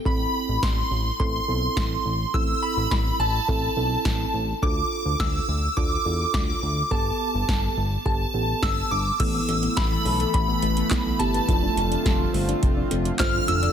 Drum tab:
CC |----------------|----------------|----------------|----------------|
HH |----------------|----------------|----------------|----------------|
CP |----------------|----------------|----------------|----------------|
SD |----o-------o---|----o-------o---|----o-------o---|----o-------o---|
BD |o---o---o---o---|o---o---o---o---|o---o---o---o---|o---o---o---o---|

CC |x---------------|----------------|
HH |x-xxx-oxx-xxx-xx|x-xxx-oxx-xxx-xx|
CP |------------x---|------------x---|
SD |----o-------o---|----o-------o---|
BD |o---o---o---o---|o---o---o---o---|